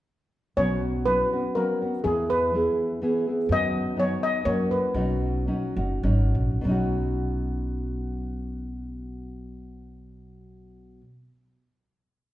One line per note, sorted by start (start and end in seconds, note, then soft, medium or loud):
0.57 1.21 B1 medium
0.57 1.07 B2 medium
0.57 1.06 F#3 medium
0.57 1.07 B3 medium
0.57 1.07 C#4 medium
0.57 1.07 F#4 medium
0.57 1.08 C#5 medium
1.06 1.33 F#3 soft
1.06 1.33 B3 medium
1.06 1.33 C#4 medium
1.06 1.32 F#4 medium
1.06 1.52 B4 medium
1.33 1.55 B3 soft
1.33 1.56 C#4 soft
1.33 1.56 F#4 soft
1.55 1.81 F#3 medium
1.55 1.82 B3 soft
1.55 1.82 C#4 medium
1.55 1.81 F#4 medium
1.55 2.05 A#4 medium
1.82 2.03 B3 soft
1.82 2.04 C#4 soft
1.82 2.04 F#4 soft
2.04 2.67 E2 medium
2.04 2.52 E3 medium
2.04 2.52 B3 medium
2.04 2.52 E4 medium
2.04 2.30 G#4 medium
2.04 2.53 G#4 medium
2.30 3.22 B4 medium
2.54 3.01 E3 soft
2.54 3.01 B3 medium
2.54 3.02 E4 medium
2.54 3.02 G#4 medium
3.02 3.26 E3 medium
3.02 3.27 B3 medium
3.02 3.27 E4 medium
3.02 3.26 G#4 medium
3.27 3.50 B3 soft
3.27 3.49 E4 soft
3.27 3.49 G#4 soft
3.49 4.11 F#2 medium
3.49 3.97 F#2 medium
3.49 3.97 D#3 medium
3.49 3.96 F#3 medium
3.49 3.95 B3 medium
3.49 3.96 D#4 medium
3.49 3.97 F#4 medium
3.49 3.99 D#5 medium
3.96 4.44 F#3 medium
3.96 4.44 B3 soft
3.96 4.45 D#4 medium
3.96 4.46 F#4 medium
3.96 4.24 C#5 medium
4.23 4.33 D#5 medium
4.45 4.77 F#2 medium
4.45 4.95 F#3 medium
4.45 4.94 A#3 medium
4.45 4.95 C#4 medium
4.45 4.95 F#4 medium
4.45 4.72 C#5 medium
4.71 5.99 B4 medium
4.94 5.47 B1 medium
4.94 5.47 B2 medium
4.94 5.47 F#3 medium
4.94 5.47 C#4 medium
4.94 5.48 D#4 medium
4.94 5.48 F#4 medium
5.47 5.76 F#3 medium
5.47 5.76 C#4 medium
5.47 5.77 D#4 medium
5.47 5.76 F#4 medium
5.76 6.00 F#1 medium
5.76 6.03 C#4 soft
5.76 6.04 D#4 soft
5.76 6.03 F#4 soft
6.03 6.31 G#1 medium
6.03 6.64 F#3 medium
6.03 6.64 C#4 medium
6.03 6.68 D#4 medium
6.03 6.71 F#4 medium
6.35 6.60 A#1 medium
6.61 11.01 B1 medium
6.61 11.01 B2 medium
6.61 11.04 F#3 medium
6.67 11.06 C#4 medium
6.67 11.08 D#4 medium
6.71 11.11 F#4 medium